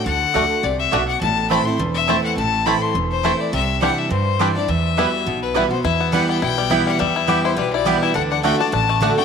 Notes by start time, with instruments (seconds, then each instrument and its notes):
0.06 upright bass D2, steel-string acoustic guitar D3, fiddle F#5
0.34 upright bass D2, steel-string acoustic guitar D3 A3 D4 F#4, mandolin A3 F#4 D5 F#5, five-string banjo A3 D4
0.63 upright bass C2, steel-string acoustic guitar C3, fiddle D5
0.79 fiddle E5
0.92 upright bass B1, steel-string acoustic guitar B2, mandolin A3 F#4 D5 F#5, five-string banjo A3 D4
1.08 fiddle F#5
1.21 upright bass A1, steel-string acoustic guitar A2, fiddle A5
1.50 steel-string acoustic guitar E3 A3 C4 E4, five-string banjo A3 C4 E4, mandolin C4 E4 C5 A5, fiddle B5
1.66 steel-string acoustic guitar C4 E4, fiddle C6
1.79 upright bass E1, steel-string acoustic guitar E2
1.94 fiddle E5
2.08 steel-string acoustic guitar E3 A3 C4 E4, five-string banjo A3 C4 E4, mandolin C4 E4 C5 A5
2.24 fiddle F#5
2.37 upright bass A1, steel-string acoustic guitar A2, fiddle A5
2.66 steel-string acoustic guitar E3 A3 C4 E4, five-string banjo A3 C4 E4, mandolin C4 E4 C5 A5, fiddle B5
2.82 fiddle C6
2.95 upright bass E1, steel-string acoustic guitar E2
3.11 fiddle C5
3.23 steel-string acoustic guitar E3 A3 C4 E4, five-string banjo A3 C4 E4, mandolin C4 E4 C5 A5
3.40 fiddle D5
3.53 upright bass C2, steel-string acoustic guitar C3, fiddle E5
3.81 steel-string acoustic guitar E3 G3 D4 E4, five-string banjo G3 C4 D4, mandolin C4 E4 D5 G5, fiddle F#5
3.98 fiddle E5
4.11 steel-string acoustic guitar G2, upright bass G2, fiddle C5
4.39 steel-string acoustic guitar E3 G3 D4 E4, five-string banjo G3 C4 D4, mandolin C4 E4 D5 G5
4.55 steel-string acoustic guitar D4 E4, fiddle D5
4.68 steel-string acoustic guitar E2, upright bass E2, fiddle E5
4.97 steel-string acoustic guitar E3 G3 B3 F#4, mandolin G3 E4 B4 E5, five-string banjo G3 B3 E4
5.26 upright bass B1, steel-string acoustic guitar B2
5.42 fiddle B4
5.54 steel-string acoustic guitar E3 G3 B3 F#4, mandolin G3 E4 B4 E5, five-string banjo G3 B3 E4
5.71 steel-string acoustic guitar B3 F#4, fiddle C5
5.84 upright bass E2, steel-string acoustic guitar E2, five-string banjo E4, fiddle E5
6.00 five-string banjo B3
6.12 steel-string acoustic guitar E3 G3 B3 E4, five-string banjo G3, mandolin B3 E4 B4 G5, fiddle F#5
6.29 five-string banjo B3, fiddle G5
6.42 upright bass B1, steel-string acoustic guitar B2, five-string banjo E4, fiddle G5
6.58 five-string banjo G3
6.70 steel-string acoustic guitar E3 G3 B3 E4, mandolin B3 E4 B4 G5, five-string banjo E4
6.87 five-string banjo G3, fiddle F#5
6.99 steel-string acoustic guitar E2, upright bass E2, five-string banjo G3, fiddle E5
7.16 five-string banjo E4
7.27 steel-string acoustic guitar E3 G3 B3 E4, mandolin B3 E4 B4 G5, five-string banjo G4
7.44 five-string banjo E4, fiddle C5
7.56 upright bass B1, steel-string acoustic guitar B2, five-string banjo G3, fiddle B4
7.73 five-string banjo E4, fiddle D5
7.85 steel-string acoustic guitar E3 G3 B3 E4, five-string banjo G3, mandolin B3 E4 B4 G5
8.02 five-string banjo E4, fiddle E5
8.14 upright bass D2, steel-string acoustic guitar D3, five-string banjo D4, fiddle F#5
8.31 five-string banjo D4, fiddle F#5
8.43 steel-string acoustic guitar D3 A3 D4 F#4, mandolin A3 F#4 D5 F#5, five-string banjo A3, fiddle G5
8.59 five-string banjo D4, steel-string acoustic guitar F#4, fiddle A5
8.72 upright bass A1, steel-string acoustic guitar A2, five-string banjo D4, fiddle A5
8.89 five-string banjo A3
9.01 steel-string acoustic guitar D3 A3 D4 F#4, mandolin A3 F#4 D5 F#5, five-string banjo D4
9.17 five-string banjo A3, steel-string acoustic guitar D4 F#4, fiddle G5